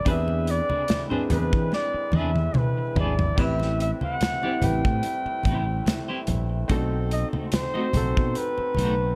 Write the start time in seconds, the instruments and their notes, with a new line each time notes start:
0.05 fingered electric bass E2, french horn section D3 G#3 C4 E4, grand piano C4 D4 G4 B4, clean electric guitar C4 D4 G#4 B4, kick, closed hi-hat, muted conga
0.10 grand piano G#4, flugelhorn E5
0.28 muted clean electric guitar stroke, muted conga
0.47 flugelhorn D5, muted clean electric guitar stroke, closed hi-hat
0.69 clean electric guitar C4 D4 G#4 B4, muted fingered electric bass stroke, high conga
0.88 muted clean electric guitar stroke, snare, closed hi-hat, muted conga, high conga
1.09 grand piano C4 D4 G#4 B4, clean electric guitar C4 D4 G#4 C5, low conga
1.29 fingered electric bass E2, grand piano C4 D4 G#4 B4, muted clean electric guitar stroke, closed hi-hat, high conga, low conga
1.33 flugelhorn B4
1.52 fingered electric bass E3, muted clean electric guitar stroke, kick
1.71 flugelhorn D5, muted clean electric guitar stroke, snare, muted conga
1.94 muted clean electric guitar stroke, muted fingered electric bass stroke
2.12 fingered electric bass E2, clean electric guitar C4 D4 G#4 B4, flugelhorn E5, high tom, high conga
2.36 high tom
2.54 flugelhorn B4, mid tom, muted conga, high conga
2.77 muted clean electric guitar stroke
2.95 fingered electric bass G#1, clean electric guitar C4 D4 G#4 B4, flugelhorn D5, floor tom, low conga
3.19 muted clean electric guitar stroke, floor tom
3.36 fingered electric bass A1, french horn section G3 A3 C4, grand piano C4 E4 G4 B4, clean electric guitar C4 E4 G4 C5, kick, splash
3.41 flugelhorn E5
3.60 muted clean electric guitar stroke, snare, muted conga
3.80 flugelhorn E5, muted clean electric guitar stroke, closed hi-hat
4.01 clean electric guitar C4 E4 G4 C5, flugelhorn F#5, muted fingered electric bass stroke, high conga
4.21 muted clean electric guitar stroke, snare, closed hi-hat, muted conga, high conga
4.42 grand piano C4 E4 G4 C5, clean electric guitar C4 E4 G4 D5, muted conga
4.60 fingered electric bass A1, grand piano C4 E4 G4 B4, flugelhorn G5, closed hi-hat, high conga, low conga
4.85 fingered electric bass A2, kick
5.03 muted clean electric guitar stroke, closed hi-hat
5.26 muted fingered electric bass stroke, muted clean electric guitar stroke, muted conga
5.43 fingered electric bass A1, clean electric guitar C4 E4 G4 C5, kick, closed hi-hat, high conga
5.67 muted clean electric guitar stroke
5.86 muted clean electric guitar stroke, snare, closed hi-hat, muted conga, high conga
6.08 clean electric guitar C4 E4 G4 C5
6.27 fingered electric bass A#1, muted clean electric guitar stroke, closed hi-hat, low conga
6.50 muted clean electric guitar stroke
6.68 fingered electric bass B1, french horn section B2 D#4, clean electric guitar A3 D#4 F#4 C5, grand piano C4 D4 F#4 A4, kick, closed hi-hat, muted conga
6.76 grand piano D#4
6.92 muted clean electric guitar stroke
7.11 flugelhorn D#5, muted clean electric guitar stroke, closed hi-hat
7.33 clean electric guitar A3 D#4 F#4 C5, muted fingered electric bass stroke, high conga
7.52 flugelhorn C5, muted clean electric guitar stroke, snare, closed hi-hat, muted conga, high conga
7.74 clean electric guitar A3 D#4 F#4 D#5, grand piano C4 D#4 F#4 C5, muted conga
7.93 fingered electric bass B1, grand piano C4 D#4 F#4 A4, muted clean electric guitar stroke, closed hi-hat, high conga, low conga
8.17 fingered electric bass B2, kick
8.35 flugelhorn B4, muted clean electric guitar stroke, closed hi-hat
8.58 muted clean electric guitar stroke, muted fingered electric bass stroke, muted conga
8.75 fingered electric bass B1, clean electric guitar A3 D#4 F#4 C5, closed hi-hat, high conga
8.99 muted clean electric guitar stroke